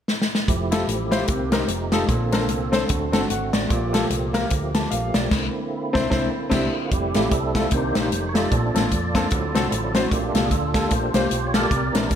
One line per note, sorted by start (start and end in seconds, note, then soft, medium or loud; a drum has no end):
0.08 snare medium
0.22 snare medium
0.35 snare medium
0.48 0.82 F1 medium
0.48 1.28 F3 medium
0.48 1.28 A3 medium
0.48 1.29 E4 medium
0.48 1.26 G4 medium
0.48 kick medium
0.48 closed hi-hat medium
0.72 0.81 E4 medium
0.72 0.81 F4 medium
0.72 0.82 G4 medium
0.72 0.82 A4 medium
0.72 snare loud
0.72 closed hi-hat medium
0.88 1.22 A1 medium
0.88 closed hi-hat medium
1.11 1.21 E4 medium
1.11 1.21 F4 medium
1.11 1.21 G4 medium
1.11 1.21 C5 medium
1.11 snare medium
1.11 closed hi-hat medium
1.27 1.63 C2 loud
1.27 1.66 C3 medium
1.27 1.68 D#3 medium
1.27 1.68 A#3 medium
1.27 1.68 C4 medium
1.27 2.08 G4 medium
1.27 kick loud
1.27 closed hi-hat medium
1.52 1.61 C4 medium
1.52 1.62 D#4 medium
1.52 1.62 G4 medium
1.52 1.62 A#4 medium
1.52 snare loud
1.52 closed hi-hat medium
1.68 2.02 F1 medium
1.68 2.08 F3 medium
1.68 2.08 A3 medium
1.68 2.08 D#4 medium
1.68 closed hi-hat medium
1.92 2.02 D#4 medium
1.92 2.02 F4 medium
1.92 2.02 G4 medium
1.92 2.02 A4 medium
1.92 snare loud
1.92 closed hi-hat medium
2.09 2.48 A#1 medium
2.09 2.69 A#2 medium
2.09 3.69 D3 medium
2.09 2.90 A#3 medium
2.09 3.69 C4 medium
2.09 2.90 A4 medium
2.09 kick medium
2.09 closed hi-hat medium
2.32 2.42 C4 medium
2.32 2.42 D4 medium
2.32 2.42 A4 medium
2.32 2.43 A#4 medium
2.32 snare loud
2.32 closed hi-hat medium
2.48 2.83 C2 medium
2.48 closed hi-hat medium
2.72 2.82 C4 medium
2.72 2.82 D4 medium
2.72 2.82 A4 medium
2.72 2.83 C5 medium
2.72 snare medium
2.72 closed hi-hat medium
2.89 3.10 D2 medium
2.89 3.49 D3 medium
2.89 5.29 A3 medium
2.89 3.70 F#4 medium
2.89 kick loud
2.89 closed hi-hat medium
3.12 3.27 G1 medium
3.12 3.22 C4 medium
3.12 3.23 D4 medium
3.12 3.23 F#4 medium
3.12 3.23 A4 medium
3.12 snare loud
3.12 closed hi-hat medium
3.30 3.50 G#1 medium
3.30 3.53 F#5 medium
3.30 closed hi-hat medium
3.53 3.68 A1 medium
3.53 3.92 D5 medium
3.53 snare loud
3.53 closed hi-hat medium
3.69 4.04 A#1 medium
3.69 4.30 A#2 medium
3.69 5.30 F3 medium
3.69 5.29 A#3 medium
3.69 5.30 G4 medium
3.69 kick loud
3.69 closed hi-hat medium
3.93 4.03 A#3 medium
3.93 4.03 F4 medium
3.93 4.03 G4 medium
3.93 4.03 A4 medium
3.93 snare loud
3.93 closed hi-hat medium
4.10 4.44 C2 medium
4.10 closed hi-hat medium
4.33 4.43 A#3 medium
4.33 4.43 F4 medium
4.33 4.44 G4 medium
4.33 4.44 A#4 medium
4.33 snare medium
4.33 closed hi-hat medium
4.50 4.85 D2 medium
4.50 kick loud
4.50 closed hi-hat medium
4.74 4.90 A5 medium
4.74 snare loud
4.74 closed hi-hat medium
4.91 5.11 A#1 medium
4.91 5.13 F5 medium
4.91 closed hi-hat medium
5.14 5.29 B1 medium
5.14 5.30 D5 medium
5.14 snare loud
5.14 closed hi-hat medium
5.31 5.47 C2 medium
5.31 6.90 D3 medium
5.31 6.91 A#3 medium
5.31 6.91 C4 medium
5.31 6.90 E4 medium
5.31 kick medium
5.31 snare medium
5.31 crash medium
5.93 6.06 C2 medium
5.93 6.05 C4 medium
5.93 6.05 D4 medium
5.93 6.06 E4 medium
5.93 6.06 C5 medium
5.93 kick loud
5.93 snare medium
6.10 6.28 C2 medium
6.10 6.27 C4 medium
6.10 6.27 D4 medium
6.10 6.27 E4 medium
6.10 6.27 C5 medium
6.10 kick loud
6.10 snare loud
6.50 6.68 C2 medium
6.50 6.66 C4 medium
6.50 6.67 D4 medium
6.50 6.67 E4 medium
6.50 6.67 G4 medium
6.50 kick loud
6.50 snare loud
6.50 crash medium
6.75 6.91 F4 medium
6.91 7.12 F1 medium
6.91 7.68 G3 medium
6.91 7.68 A3 soft
6.91 7.33 C4 medium
6.91 7.33 E4 medium
6.91 7.33 G4 medium
6.91 kick medium
6.91 closed hi-hat medium
7.14 7.29 A1 medium
7.14 7.24 A3 medium
7.14 7.25 E4 medium
7.14 7.25 F4 medium
7.14 7.25 G4 medium
7.14 snare medium
7.14 closed hi-hat medium
7.31 7.66 C2 medium
7.31 7.70 C4 medium
7.31 7.70 E4 medium
7.31 7.70 A4 medium
7.31 kick medium
7.31 closed hi-hat medium
7.55 7.64 A3 medium
7.55 7.65 E4 medium
7.55 7.65 F4 medium
7.55 7.65 A4 medium
7.55 kick medium
7.55 snare medium
7.55 closed hi-hat medium
7.71 7.92 C2 loud
7.71 8.09 C3 medium
7.71 8.11 D#3 medium
7.71 8.11 A#3 soft
7.71 8.14 D#4 medium
7.71 8.25 G4 medium
7.71 8.30 C5 medium
7.71 kick loud
7.71 closed hi-hat medium
7.75 8.11 D4 medium
7.95 8.10 A#1 medium
7.95 8.04 A#3 medium
7.95 8.05 C4 medium
7.95 8.05 D#4 medium
7.95 8.05 G4 medium
7.95 snare loud
7.95 closed hi-hat medium
8.12 8.46 F1 medium
8.12 8.41 G3 medium
8.12 8.42 A3 medium
8.12 8.42 D#4 medium
8.12 closed hi-hat medium
8.29 8.36 C#5 medium
8.34 8.44 A3 medium
8.34 8.44 D#4 medium
8.34 8.44 F4 medium
8.34 9.93 F4 medium
8.34 8.45 G4 medium
8.34 9.93 A4 medium
8.34 10.01 D5 medium
8.34 snare loud
8.34 closed hi-hat medium
8.51 8.72 A#1 medium
8.51 9.11 A#2 medium
8.51 8.81 A3 medium
8.51 8.81 C4 medium
8.51 8.82 D4 medium
8.51 kick medium
8.51 closed hi-hat medium
8.74 8.93 A1 medium
8.74 8.84 A#3 medium
8.74 8.84 C4 medium
8.74 8.84 D4 medium
8.74 8.85 A4 medium
8.74 snare loud
8.74 closed hi-hat medium
8.91 9.26 F2 medium
8.91 kick medium
8.91 closed hi-hat medium
9.14 9.24 A#3 medium
9.14 9.24 C4 medium
9.14 9.25 D4 medium
9.14 9.25 A4 medium
9.14 kick medium
9.14 snare medium
9.14 closed hi-hat medium
9.30 9.52 D2 medium
9.30 9.91 D3 medium
9.30 10.08 F#3 medium
9.30 10.09 C4 soft
9.30 10.09 E4 medium
9.30 kick loud
9.30 closed hi-hat medium
9.55 9.69 C2 medium
9.55 9.64 C4 medium
9.55 9.64 D4 medium
9.55 9.65 F#4 medium
9.55 9.65 A4 medium
9.55 snare loud
9.55 closed hi-hat medium
9.72 10.06 A1 medium
9.72 closed hi-hat medium
9.94 10.04 C4 medium
9.94 10.05 D4 medium
9.94 10.12 F#4 medium
9.94 10.05 F#4 medium
9.94 10.05 C5 medium
9.94 snare loud
9.94 closed hi-hat medium
10.11 10.31 A#1 medium
10.11 10.71 A#2 medium
10.11 10.41 A3 medium
10.11 10.41 A#3 soft
10.11 10.51 D4 medium
10.11 10.41 F4 medium
10.11 10.44 G4 medium
10.11 kick medium
10.11 closed hi-hat medium
10.34 10.49 C2 medium
10.34 10.44 A#3 medium
10.34 10.44 F4 medium
10.34 10.44 G4 medium
10.34 10.44 A4 medium
10.34 snare loud
10.34 closed hi-hat medium
10.45 10.52 G#4 medium
10.51 10.85 D2 medium
10.51 11.28 D4 medium
10.51 10.91 F4 medium
10.51 10.93 A4 medium
10.51 kick medium
10.51 closed hi-hat medium
10.74 10.84 A#3 medium
10.74 10.84 F4 medium
10.74 10.85 G4 medium
10.74 10.85 A4 medium
10.74 kick medium
10.74 snare medium
10.74 closed hi-hat medium
10.91 11.11 A#1 medium
10.91 11.13 A3 soft
10.91 11.13 A#3 soft
10.91 11.68 F4 medium
10.91 11.53 G4 medium
10.91 11.49 C5 medium
10.91 kick loud
10.91 closed hi-hat medium
11.14 11.28 C2 medium
11.14 11.24 A#3 medium
11.14 11.24 F4 medium
11.14 11.24 G4 medium
11.14 11.25 C5 medium
11.14 snare loud
11.14 closed hi-hat medium
11.31 11.65 B1 medium
11.31 closed hi-hat medium
11.47 11.55 C#5 medium
11.54 11.64 A#3 medium
11.54 11.64 F4 medium
11.54 12.15 G4 medium
11.54 11.65 G4 medium
11.54 11.65 A4 medium
11.54 12.15 A#4 medium
11.54 12.15 D5 loud
11.54 snare loud
11.54 closed hi-hat medium
11.71 11.91 C2 medium
11.71 12.15 C3 medium
11.71 kick medium
11.71 closed hi-hat medium
11.92 12.09 A#1 medium
11.92 12.15 E3 soft
11.92 12.15 A#3 soft
11.92 12.04 C4 medium
11.92 12.15 D4 medium
11.92 12.04 D4 medium
11.92 12.04 E4 medium
11.92 12.05 A#4 medium
11.92 snare loud
11.92 closed hi-hat medium
12.11 12.15 G1 medium
12.11 kick medium
12.11 closed hi-hat medium